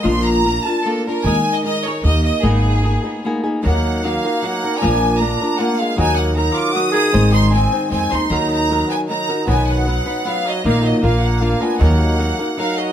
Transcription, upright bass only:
X:1
M:3/4
L:1/8
Q:1/4=153
K:G#m
V:1 name="Upright bass" clef=bass
A,,,4 z2 | D,, z3 D,,2 | G,,,4 z2 | [K:Ebm] E,,4 z2 |
B,,,4 z2 | E,,4 z2 | A,,,4 F,, E,, | E,,4 z2 |
=B,,,4 z2 | B,,,2 B,,,4 | E,,4 z2 |]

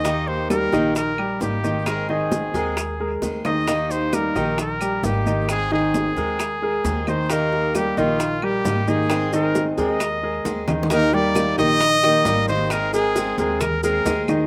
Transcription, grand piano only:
X:1
M:4/4
L:1/8
Q:1/4=133
K:Eb
V:1 name="Grand piano"
[E,Ee]2 [G,GB] [E,Ee]2 [G,GB]2 [E,Ee]- | [E,Ee] [E,Ee]2 [A,AB]2 [A,AB]2 [E,Ee] | [E,Ee]2 [G,GB] [E,Ee]2 [G,GB]2 [E,Ee]- | [E,Ee] [E,Ee]2 [A,AB]2 [A,AB]2 [E,Ee] |
[E,Ee]2 [G,GB] [E,Ee]2 [G,GB]2 [E,Ee]- | [E,Ee] [E,Ee]2 [A,AB]2 [A,AB]2 [E,Ee] | [E,Ee] [G,GB]2 [E,Ee]2 [E,Ee] [G,GB] [E,Ee]- | [E,Ee] [A,AB]2 [A,AB]2 [A,AB]2 [E,Ee] |]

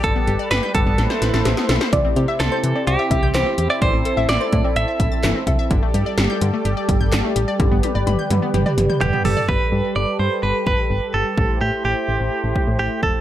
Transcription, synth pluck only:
X:1
M:4/4
L:1/16
Q:1/4=127
K:Gmix
V:1 name="Synth pluck"
z16 | d z2 e z c z d z2 e2 c3 z | d z2 e z c z d z2 e2 z2 e z | z16 |
z16 | z16 | z16 |]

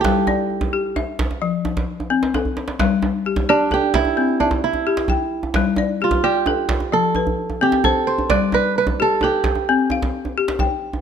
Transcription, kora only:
X:1
M:12/8
L:1/8
Q:3/8=87
K:Gmix
V:1 name="Kora"
G3 z8 z | z3 D G E2 D E4- | E z F G3 A2 z G A c | d B B A G4- G z3 |]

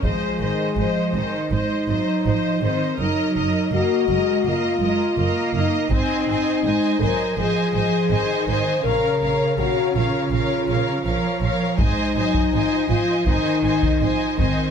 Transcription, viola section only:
X:1
M:4/4
L:1/8
Q:1/4=82
K:Abmix
V:1 name="Viola section"
c c c c c c c c | B B B B B B B B | c c c c c c c c | B B B B B B B B |
c c c c c c c c |]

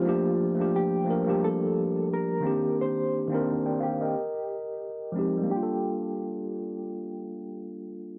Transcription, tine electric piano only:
X:1
M:4/4
L:1/16
Q:"Swing 16ths" 1/4=88
K:Gm
V:1 name="Tine electric piano"
z16 | z4 z [dg] [cf] [Be]2 z6 z | z16 |]
V:2 name="Tine electric piano"
[F,A,B,DG]3 [F,A,B,DG]3 [F,A,B,DB] [F,G,B,DG]6- [F,G,B,DG] [E,B,CDG]2- | [E,B,CDG]3 [E,B,CDB]3 z8 [F,_A,CEG]2 | [G,B,DFA]16 |]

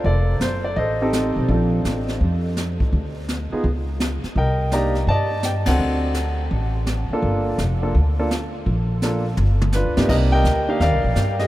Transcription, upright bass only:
X:1
M:4/4
L:1/8
Q:"Swing" 1/4=168
K:Gm
V:1 name="Upright bass" clef=bass
F,,,2 ^F,,,2 A,,,3 =B,,, | B,,,2 A,,,2 F,,3 A,, | D,,3 z ^C,,3 z | C,,4 G,,3 ^C,, |
D,,4 A,,,3 z | G,,,2 F,,,2 D,,4 | B,,,4 G,,,2- (3G,,, D,, G,, | [K:Cm] C,,2 D,,2 (3E,, C,, B,,, G,,2 |]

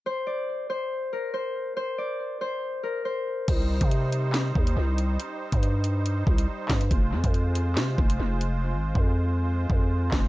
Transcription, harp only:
X:1
M:4/4
L:1/8
Q:1/4=140
K:Cm
V:1 name="Harp"
c d2 c z B c2 | c d2 c z B c2 | z8 | z8 |
z8 | z8 |]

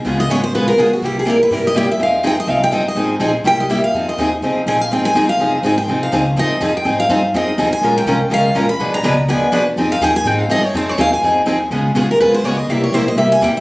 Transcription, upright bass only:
X:1
M:4/4
L:1/8
Q:"Swing" 1/4=247
K:Fm
V:1 name="Upright bass" clef=bass
D,,2 A,,,2 B,,,2 _C,,2 | C,,4 G,,4 | F,,4 C,,2 G,,,2 | A,,,2 B,,,2 C,,4 |
F,,2 E,,2 C,, z B,,,2 | A,,,2 G,,,2 F,,,2 A,,,2 | C,,2 D,,2 E,,2 F,,2 | A,,2 G,,2 F,,2 E,,2 |
B,,,2 C,,2 D,,2 B,,,2 | =B,,,2 D,,2 =D,,2 =E,,2 | F,,2 E,,2 A,,2 G,,2 | F,,2 E,,2 F,,2 E,,2 |
D,,2 _C,,2 E,, z D,,2 | C,,2 B,,,2 C,,2 =E,, z |]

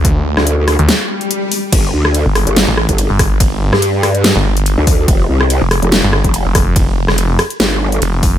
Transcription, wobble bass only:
X:1
M:4/4
L:1/16
Q:"Swing 16ths" 1/4=143
K:Fmix
V:1 name="Wobble bass" clef=bass
z3 D,,4 z8 z | G,,,2 D,,3 z2 G,,,2 z2 G,,,2 z3 | z3 G,,6 z4 D,,3 | F,,,2 C,,3 z2 F,,,2 z2 F,,,2 z3 |
z8 G,,,4 z4 |]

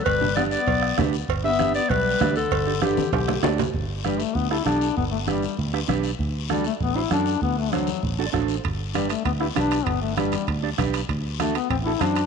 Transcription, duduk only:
X:1
M:4/4
L:1/8
Q:1/4=196
K:G
V:1 name="Duduk"
G,2 B, B,4 z | z B,2 B, G,3 D,- | D,2 D,2 D,2 z2 | z2 G, A, B, E D2 |
B, A, G,2 z4 | z2 G, A, B, E D2 | B, A, F,2 z4 | z2 G, A, B, E D2 |
B, A, G,2 z4 | z2 A, B, C E D2 |]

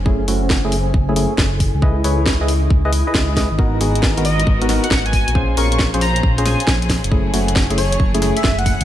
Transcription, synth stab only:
X:1
M:4/4
L:1/16
Q:"Swing 16ths" 1/4=136
K:F#dor
V:1 name="Synth stab"
[A,CEG]2 [A,CEF]3 [A,CEG] z3 [A,CEG] [A,CEG] z4 z | [EGBd]2 [EGBc]3 [EGBd] z3 [EGBd] z [EGBd]3 [EGBd] z | [B,DF^A]2 [B,DFG]3 [B,DFA] z3 [B,DFA] [B,DFA] z4 z | [C^EG^B]2 [CEG^A]3 [CEGB] z3 [CEGB] [CEGB] z4 z |
[A,CEG]2 [A,CEF]3 [A,CEG] z3 [A,CEG] [A,CEG] z4 z |]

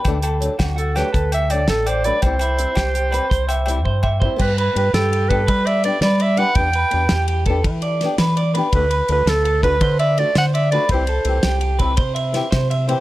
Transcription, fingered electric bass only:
X:1
M:12/8
L:1/8
Q:3/8=111
K:G
V:1 name="Fingered electric bass" clef=bass
D,,3 D,,3 D,,3 A,,,3 | C,,3 C,,3 C,,3 G,,3 | G,,2 G,, G,,3 G,3 G,3 | E,,2 E,, E,,3 E,3 E,3 |
D,,2 D,, D,,3 D,3 D,3 | C,,2 C,, C,,3 C,3 C,3 |]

